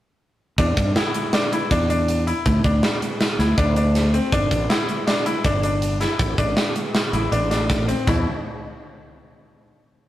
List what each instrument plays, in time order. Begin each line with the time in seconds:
0.58 fretless electric bass E2, grand piano D4, kick, closed hi-hat
0.77 fretless electric bass G2, kick, closed hi-hat
0.96 grand piano E4, snare, closed hi-hat
1.14 closed hi-hat
1.33 grand piano D4, snare, closed hi-hat
1.52 grand piano E4, closed hi-hat
1.71 fretless electric bass E2, grand piano D4, kick, closed hi-hat
1.90 grand piano D4, closed hi-hat
2.08 closed hi-hat
2.27 grand piano E4, closed hi-hat
2.46 fretless electric bass D2, kick, closed hi-hat
2.64 fretless electric bass D2, grand piano D4, kick, closed hi-hat
2.83 snare, closed hi-hat
3.02 closed hi-hat
3.21 snare, closed hi-hat
3.39 fretless electric bass D2, grand piano E4, snare, closed hi-hat
3.58 fretless electric bass D2, grand piano D4, kick, closed hi-hat
3.76 grand piano D4, closed hi-hat
3.95 snare, closed hi-hat
4.14 grand piano C4, closed hi-hat
4.32 fretless electric bass G1, grand piano D4, kick, closed hi-hat
4.51 fretless electric bass A1, kick, closed hi-hat
4.70 grand piano E4, snare, closed hi-hat
4.89 closed hi-hat
5.07 grand piano D4, snare, closed hi-hat
5.26 grand piano E4, closed hi-hat
5.44 fretless electric bass G1, grand piano D4, kick, closed hi-hat
5.63 grand piano D4, closed hi-hat
5.82 closed hi-hat
6.00 grand piano E4, snare, closed hi-hat
6.19 fretless electric bass A1, kick, closed hi-hat
6.38 fretless electric bass A1, grand piano D4, kick, closed hi-hat
6.57 snare, closed hi-hat
6.76 closed hi-hat
6.95 snare, closed hi-hat
7.13 fretless electric bass A1, grand piano E4, closed hi-hat
7.32 fretless electric bass A1, grand piano D4, closed hi-hat
7.51 grand piano D4, snare, closed hi-hat
7.70 kick, snare, closed hi-hat
7.88 grand piano C4, closed hi-hat
8.07 fretless electric bass E2, grand piano E4, kick, floor tom, crash